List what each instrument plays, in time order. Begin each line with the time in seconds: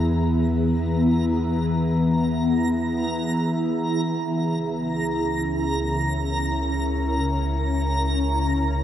Already playing: analog synth bass E2, ambient pad E3 B3 E4 G#4, synth texture A#5
3.92 analog synth bass C#2, ambient pad C#3
4.33 ambient pad C#4
5.25 ambient pad A#4